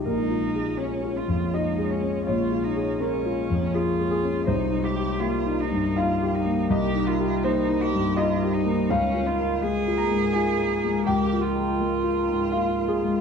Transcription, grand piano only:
\new Staff \with { instrumentName = "Grand piano" } { \time 3/4 \key bes \dorian \tempo 4 = 82 << { bes'2 ees''4 | des''4 bes'4 aes'8 aes'8 | c''2 f''4 | ees''4 c''4 ees''4 |
f''4. bes''8 aes''4 | g''2 f''8 aes'8 | } \\ { \tuplet 3/2 { bes,,8 f'8 aes'8 des'8 f'8 f,8 f'8 aes'8 des'8 } | \tuplet 3/2 { bes,,8 f'8 aes'8 des'8 f'8 f,8 f'8 aes'8 des'8 } | \tuplet 3/2 { c,8 ees'8 g'8 bes8 ees'8 g,8 ees'8 g'8 bes8 } | \tuplet 3/2 { c,8 ees'8 g'8 bes8 ees'8 g,8 ees'8 g'8 bes8 } |
\tuplet 3/2 { des,8 f'8 bes'8 aes8 f'8 aes,8 f'8 bes'8 aes8 } | \tuplet 3/2 { des,8 f'8 bes'8 aes8 f'8 aes,8 f'8 bes'8 aes8 } | } >> }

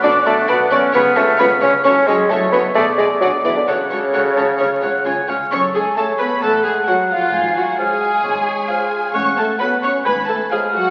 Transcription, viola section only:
\new Staff \with { instrumentName = "Viola section" } { \time 4/4 \key fis \minor \tempo 4 = 132 fis'8 fis'8 fis'8 fis'8 eis'8 eis'8 eis'8 eis'8 | fis'8 fis'8 fis'8 fis'8 gis'8 gis'8 gis'8 gis'8 | fis'8 fis'8 fis'8 fis'8 eis'8 eis'8 eis'8 eis'8 | cis''8 gis'8 a'8 b'8 a'8 gis'8 fis'8 eis'8~ |
eis'8 fis'8 gis'2. | cis''8 a'8 b'8 cis''8 b'8 a'8 gis'8 fis'8 | }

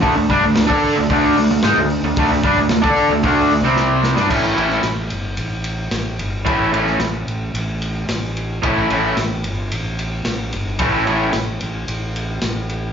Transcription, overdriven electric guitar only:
\new Staff \with { instrumentName = "Overdriven electric guitar" } { \time 4/4 \key a \mixolydian \tempo 4 = 111 <d a>16 <d a>16 <g d'>16 <d a>16 <d a>16 <d' a' d''>8 <d a>16 <d a d'>8 <d a>16 <d a>16 <gis dis'>16 <d a>8 <d a>16 | <d a>16 <d a>16 <g d'>16 <d a>16 <d a>16 <d' a' d''>8 <d a>16 <d a d'>8 <d a>16 <c g c'>4 <g d'>16 | <a, e a cis' e'>8 <a, e a cis' e'>8 r2. | <a, e a cis' e'>8 <a, e a cis' e'>8 r2. |
<a, e a cis' e'>8 <a, e a cis' e'>8 r2. | <a, e a cis' e'>8 <a, e a cis' e'>8 r2. | }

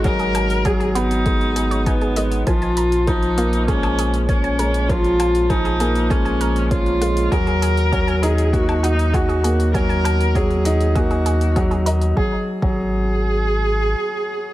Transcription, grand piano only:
\new Staff \with { instrumentName = "Grand piano" } { \clef bass \time 4/4 \key ais \phrygian \tempo 4 = 99 fis8 r8 fis8 b8 gis16 r8. dis'8 gis16 r16 | eis8 r8 eis8 ais8 gis16 r8. cis'8 gis16 r16 | eis8 r8 eis8 ais8 gis16 r8. cis'8 gis16 r16 | fis8 r8 fis8 dis'8 ais16 r8. fis'8 ais16 r16 |
fis8 r8 fis8 dis'8 ais16 r8. fis8 dis''16 r16 | fis16 r8 fis16 r2. | }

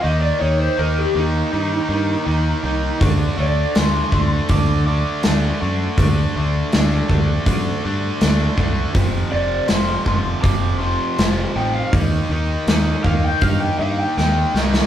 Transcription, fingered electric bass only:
\new Staff \with { instrumentName = "Fingered electric bass" } { \clef bass \time 4/4 \key d \phrygian \tempo 4 = 81 ees,8 ees,8 ees,8 ees,8 g,8 g,8 ees,8 c,8 | d,8 d,8 d,8 d,8 d,4 d,8 fis,8 | d,8 d,8 d,8 d,8 fis,8 g,8 d,8 c,8 | f,,8 f,,8 f,,8 f,,8 f,,4 f,,8 a,,8 |
ees,8 ees,8 ees,8 ees,8 g,8 g,8 ees,8 c,8 | }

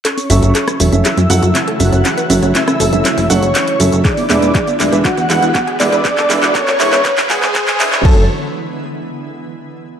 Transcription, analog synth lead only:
\new Staff \with { instrumentName = "Analog synth lead" } { \time 4/4 \key fis \minor \tempo 4 = 120 cis''2 e''4. fis''8~ | fis''4 e''4. cis''4. | d''2 fis''4. d''8~ | d''4 cis''4. gis'4. |
a'8 r2. r8 | }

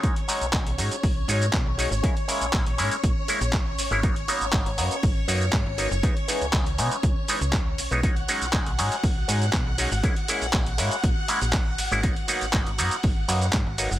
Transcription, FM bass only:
\new Staff \with { instrumentName = "FM bass" } { \clef bass \time 4/4 \key gis \minor \tempo 4 = 120 r8. b,,16 b,,16 b,,16 gis,16 r16 b,,8 gis,8 b,16 b,,8 gis,,16 | r8. ais,,16 ais,,16 ais,,16 gis,16 r16 ais,,16 r8 ais,,8. gis,,16 gis,,16~ | gis,,8 r16 gis,,16 gis,,16 gis,,16 fis,16 r16 gis,,8 fis,8 gis,16 gis,,8 fis,,16 | r8. cis,16 cis,16 cis,16 b,16 r16 cis,16 r8 cis,8. b,,16 b,,16~ |
b,,8 r16 b,,16 b,,16 b,,16 gis,16 r16 b,,8 gis,8 b,16 b,,8 gis,,16 | r8. ais,,16 ais,,16 ais,,16 gis,16 r16 ais,,16 r8 ais,,8. gis,,16 gis,,16~ | gis,,8 r16 gis,,16 gis,,16 gis,,16 fis,16 r16 gis,,8 fis,8 gis,16 gis,,8 fis,,16 | }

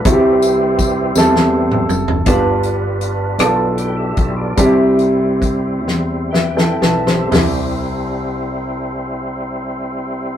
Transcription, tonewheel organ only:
\new Staff \with { instrumentName = "Tonewheel organ" } { \time 6/8 \key c \major \tempo 4. = 49 << { <e' g' c''>2~ <e' g' c''>8 r8 | r2 <b' g''>16 <g' e''>8 <f' d''>16~ | <f' d''>16 r4. r16 <b' g''>8 <g' e''>16 <e' c''>16~ | <e' c''>16 r2 r8. | } \\ { <e g c'>4. r8 <e g c'>8 r8 | <g d' f' a' b'>2. | <g c' d' e' c''>2. | <g c' e' c''>2. | } >> }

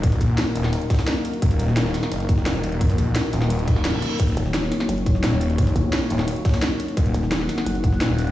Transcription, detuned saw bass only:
\new Staff \with { instrumentName = "Detuned saw bass" } { \clef bass \time 4/4 \key ees \minor \tempo 4 = 173 ees,,8 bes,,8 r8 ees,,8 r2 | ees,,8 ees,,8 ees,,8 r8 ges,,4 ees,,4~ | ees,,8 bes,,8 r8 ees,,8 ees,,4. r8 | ees,,8 r2 r8 ees,,4~ |
ees,,8 r4 ees,,8 r2 | ees,,8 r2 r8 ees,,4 | }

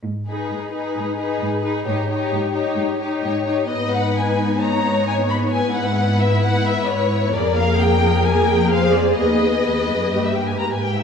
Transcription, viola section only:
\new Staff \with { instrumentName = "Viola section" } { \time 4/4 \key gis \minor \tempo 4 = 131 << { r1 | r1 | dis'1 | e'1 |
gis'1~ | gis'2 g'4. r8 | } \\ { r8 dis'4 dis'4 dis'4 dis'8 | dis'8 dis'4 dis'4 dis'4 dis'8 | b1~ | b1 |
ais1 | b2 bes4. r8 | } >> }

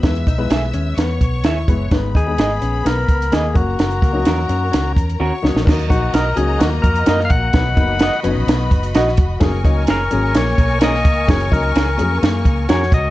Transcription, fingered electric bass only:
\new Staff \with { instrumentName = "Fingered electric bass" } { \clef bass \time 4/4 \key fis \mixolydian \tempo 4 = 128 e,8 b,,8 b,,8 dis,8 e,8 b,,8 dis,8 fis,,8 | gis,,8 dis,8 gis,,8 ais,,8 b,,8 cis,8 dis,8 fis,,8 | fis,,8 cis,8 e,8 fis,8 cis,8 e,8 dis,16 r16 cis,16 ais,,16 | \key fis \major dis,8 ais,,8 b,,8 cis,8 dis,8 eis,8 fis,8 ais,,8 |
b,,8 fis,,8. r16 fis,,16 ais,,16 b,,8 fis,,8 ais,,8 eis,,8 | fis,,8 cis,8 fis,,8 gis,,8 ais,,8 b,,4 cis,8 | fis,,8 cis,8 cis,8 eis,8 fis,8 cis,8 eis,8 cis,8 | }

